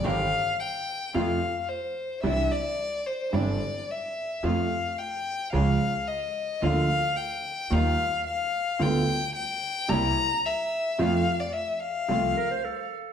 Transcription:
<<
  \new Staff \with { instrumentName = "Violin" } { \time 4/4 \key f \major \tempo 4 = 110 f''4 g''4 f''4 c''4 | e''8 d''4 c''8 d''4 e''4 | f''4 g''4 f''4 ees''4 | f''4 g''4 f''4 f''4 |
g''4 g''4 bes''4 e''4 | f''8. d''16 e''8 f''2 r8 | }
  \new Staff \with { instrumentName = "Clarinet" } { \time 4/4 \key f \major r1 | r1 | r1 | r1 |
r1 | r2 r8 bes'16 c''16 a'4 | }
  \new Staff \with { instrumentName = "String section" } { \time 4/4 \key f \major <c' ees' g'>8 r4. <a c' f'>8 r4. | <c' d' e'>8 r4. <c' d' e'>8 r4. | <a c' f'>8 r4. <aes des' f'>8 r4. | <bes d' f'>8 r4. <g ees' f'>8 r4. |
<g b f'>8 r4. <bes c' e'>8 r4. | <a c' f'>8 r4. <a c' f'>8 r4. | }
  \new Staff \with { instrumentName = "Grand piano" } { \clef bass \time 4/4 \key f \major <g,, g, ees g c' g'>8 r4. <f, c f a f'>8 r4. | <c, c e g d'>8 r4. <g,, g, c e g d'>8 r4. | <f, c f a f'>8 r4. <des, des f aes f'>8 r4. | <d, d f bes f'>8 r4. <ees, ees g bes f'>8 r4. |
<d, d g b f'>8 r4. <c, c g bes e'>8 r4. | <f, c f a f'>8 r4. <c, c f a f'>8 r4. | }
  \new Staff \with { instrumentName = "Upright bass" } { \clef bass \time 4/4 \key f \major g,,8 r4. f,8 r4. | c,8 r4. g,,8 r4. | f,8 r4. des,8 r4. | d,8 r4. ees,8 r4. |
d,8 r4. c,8 r4. | f,8 r4. c,8 r4. | }
>>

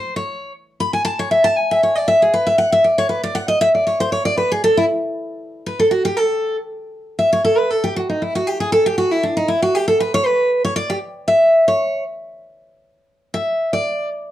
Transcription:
\new Staff \with { instrumentName = "Steel-string acoustic guitar" } { \time 4/4 \key cis \phrygian \tempo 4 = 235 c''8 cis''4. r4 b''8 gis''8 | a''8 cis''8 e''8 a''8 gis''8 e''8 cis''8 d''8 | e''8 gis'8 b'8 e''8 fis''8 e''8 d''8 cis''8 | b'8 d''8 fis''8 dis''8 e''8 d''8 cis''8 c''8 |
cis''8 d''8 b'8 gis'8 a'8 e'8 r4 | \key a \mixolydian r2 b'8 a'8 fis'8 g'8 | a'4. r2 r8 | e''8 cis''8 a'8 b'8 a'8 g'8 fis'8 dis'8 |
e'8 fis'8 g'8 gis'8 a'8 g'8 fis'8 e'8 | d'8 dis'8 e'8 fis'8 g'8 a'8 b'8 cis''8 | b'4. cis''8 d''8 g'8 r4 | e''4. cis''4. r4 |
r1 | e''4. d''4. r4 | }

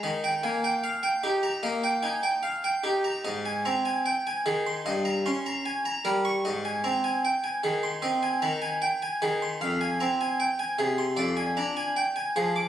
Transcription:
<<
  \new Staff \with { instrumentName = "Harpsichord" } { \time 4/4 \key aes \lydian \tempo 4 = 76 ees''16 g''16 aes''16 g''16 f''16 g''16 g'16 bes''16 ees''16 g''16 aes''16 g''16 f''16 g''16 g'16 bes''16 | ees''16 aes''16 bes''16 aes''16 g''16 aes''16 aes'16 c'''16 ees''16 bes''16 c'''16 bes''16 aes''16 bes''16 bes'16 des'''16 | ees''16 aes''16 bes''16 aes''16 g''16 aes''16 aes'16 c'''16 ees''16 aes''16 bes''16 aes''16 g''16 aes''16 aes'16 c'''16 | \key f \dorian f''16 aes''16 bes''16 aes''16 g''16 aes''16 aes'16 c'''16 d''16 aes''16 bes''16 aes''16 g''16 aes''16 aes'16 d'''16 | }
  \new Staff \with { instrumentName = "Harpsichord" } { \clef bass \time 4/4 \key aes \lydian ees8 bes8 r8 ees'8 bes8 ees'8 r8 ees'8 | aes,8 c'8 r8 ees8 g,8 des'8 r8 g8 | aes,8 c'8 r8 ees8 c'8 ees8 r8 ees8 | \key f \dorian f,8 c'8 r8 c8 f,8 d'8 r8 f8 | }
>>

